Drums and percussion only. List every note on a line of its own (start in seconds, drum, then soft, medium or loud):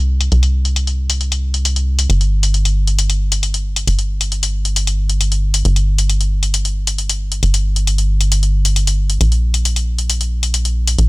0.21 closed hi-hat medium
0.32 closed hi-hat medium
0.43 closed hi-hat medium
0.65 closed hi-hat medium
0.76 closed hi-hat medium
0.87 closed hi-hat medium
1.10 closed hi-hat medium
1.21 closed hi-hat medium
1.32 closed hi-hat medium
1.54 closed hi-hat medium
1.65 closed hi-hat medium
1.76 closed hi-hat medium
1.99 closed hi-hat medium
2.10 closed hi-hat medium
2.21 closed hi-hat medium
2.43 closed hi-hat medium
2.54 closed hi-hat medium
2.65 closed hi-hat medium
2.87 closed hi-hat medium
2.99 closed hi-hat medium
3.10 closed hi-hat medium
3.32 closed hi-hat medium
3.43 closed hi-hat medium
3.54 closed hi-hat medium
3.76 closed hi-hat medium
3.87 closed hi-hat medium
3.99 closed hi-hat medium
4.21 closed hi-hat medium
4.32 closed hi-hat medium
4.43 closed hi-hat medium
4.65 closed hi-hat medium
4.76 closed hi-hat medium
4.87 closed hi-hat medium
5.09 closed hi-hat medium
5.21 closed hi-hat medium
5.32 closed hi-hat medium
5.54 closed hi-hat medium
5.65 closed hi-hat medium
5.76 closed hi-hat medium
5.98 closed hi-hat medium
6.10 closed hi-hat medium
6.21 closed hi-hat medium
6.43 closed hi-hat medium
6.54 closed hi-hat medium
6.65 closed hi-hat medium
6.87 closed hi-hat medium
6.98 closed hi-hat medium
7.09 closed hi-hat medium
7.32 closed hi-hat medium
7.43 closed hi-hat medium
7.54 closed hi-hat medium
7.76 closed hi-hat medium
7.87 closed hi-hat medium
7.98 closed hi-hat medium
8.21 closed hi-hat medium
8.32 closed hi-hat medium
8.43 closed hi-hat medium
8.65 closed hi-hat medium
8.76 closed hi-hat medium
8.87 closed hi-hat medium
9.10 closed hi-hat medium
9.21 closed hi-hat medium
9.32 closed hi-hat medium
9.54 closed hi-hat medium
9.65 closed hi-hat medium
9.76 closed hi-hat medium
9.98 closed hi-hat medium
10.10 closed hi-hat medium
10.21 closed hi-hat medium
10.43 closed hi-hat medium
10.54 closed hi-hat medium
10.65 closed hi-hat medium
10.87 closed hi-hat medium
10.98 closed hi-hat medium